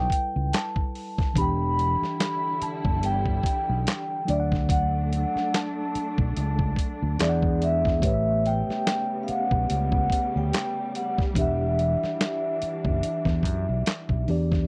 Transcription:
Already playing: G3 E4 A4 B4 G5
0.10 G5, kick, closed hi-hat
0.36 C#2
0.53 A5, snare, clap, closed hi-hat
0.76 kick
0.95 open hi-hat
1.18 kick, snare
1.34 E1 D3 E3 G3 D4 E4, kick, closed hi-hat
1.38 G4 G5 B5
1.79 closed hi-hat
2.02 muted fingered electric bass stroke, snare
2.20 snare, clap, closed hi-hat
2.62 A5, muted fingered electric bass stroke, closed hi-hat
2.85 F#1, kick
3.03 G1 G5, closed hi-hat
3.26 kick
3.43 kick, closed hi-hat
3.69 B1
3.87 snare, clap, closed hi-hat
4.25 D2 F#3 A3 D4, closed hi-hat
4.29 D5 E5
4.40 F#5
4.52 kick, snare
4.69 F#5, kick, closed hi-hat
5.13 closed hi-hat
5.36 muted fingered electric bass stroke, snare
5.54 A5, snare, clap, closed hi-hat
5.95 muted fingered electric bass stroke, closed hi-hat
6.18 B1, kick
6.37 C#2, closed hi-hat
6.59 kick
6.76 kick, closed hi-hat
7.02 D2
7.18 E2 E3 G#3 D4 G#4 D5, snare, clap, closed hi-hat
7.23 E5
7.29 F#5
7.42 kick
7.62 E5, closed hi-hat
7.85 kick, snare
8.00 A1 C#3 G3 A3 B3 G4 B4, kick, closed hi-hat
8.05 C#5 E5
8.14 E5
8.46 G5, closed hi-hat
8.69 muted fingered electric bass stroke, snare
8.87 snare, clap, closed hi-hat
9.23 F5
9.28 F#5, muted fingered electric bass stroke, closed hi-hat
9.51 B1, kick
9.70 C#2 F#5, closed hi-hat
9.92 kick
10.10 kick, closed hi-hat
10.36 D2 G5
10.53 snare, clap, closed hi-hat
10.95 F#5, closed hi-hat
11.18 kick, snare
11.34 E1 E3 D4, kick, closed hi-hat
11.38 G4 E5 F#5
11.79 closed hi-hat
12.03 muted fingered electric bass stroke, snare
12.21 snare, clap, closed hi-hat
12.62 muted fingered electric bass stroke, closed hi-hat
12.85 F#1, kick
13.03 closed hi-hat
13.25 E2, kick, snare
13.43 F#2, kick, closed hi-hat
13.69 B1
13.86 muted fingered electric bass stroke, snare, clap, closed hi-hat
14.09 B1, kick
14.27 E2 E3 D4 G4, open hi-hat
14.31 D5
14.52 kick, snare

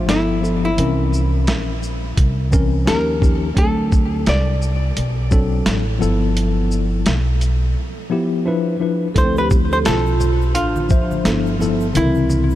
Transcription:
0.07 G1 F3 B3 E4 A4, snare, closed hi-hat
0.41 F3 B3 E4 A4, shaker
0.65 E4
0.77 C2 E3 C4 C#4 A#4, closed hi-hat
1.13 shaker
1.47 A#1, snare, closed hi-hat
1.83 shaker
2.17 C2, kick, closed hi-hat
2.51 E3 C4 C#4 A#4, kick, shaker
2.85 D#2 F3 C#4 D#4 G4 A#4, snare, closed hi-hat
3.20 F3 C#4 D#4 G4, kick, shaker
3.55 D2 F#3 C4 D4 A4, kick, closed hi-hat
3.92 kick, shaker
4.26 C2 D5, snare, closed hi-hat
4.62 shaker
4.97 B1, closed hi-hat
5.31 F#3 C4 D4 A4, kick, shaker
5.66 A1, snare, closed hi-hat
5.99 G1 F3 B3 E4 A4, shaker
6.37 closed hi-hat
6.71 shaker
7.06 B1, snare, closed hi-hat
7.41 closed hi-hat, shaker
8.10 F3 B3 E4 G4
8.45 F3 D4 E4 B4
8.80 F3 D4 E4 B4
9.14 D2 F3 D4 E4 A4 B4 C5, kick, closed hi-hat, shaker
9.24 C4
9.35 G4 B4, shaker
9.50 kick, low conga, shaker
9.70 A4 C5, shaker
9.84 B1 F4 A4, snare, closed hi-hat, high conga, shaker
10.06 shaker
10.20 high conga, low conga, shaker
10.42 shaker
10.53 A1 D4 F4, closed hi-hat, shaker
10.76 high conga, shaker
10.89 F3 D4 E5, kick, shaker
10.91 C5, shaker
11.11 high conga, shaker
11.24 G1 F3 B3 E4 A4, snare, closed hi-hat, shaker
11.46 shaker
11.59 F3 B3 E4 A4, low conga, shaker
11.80 shaker
11.93 C2 C#3 D#3 C4 E4 A#4, closed hi-hat, shaker
12.00 E3
12.15 shaker
12.29 low conga, shaker
12.50 shaker

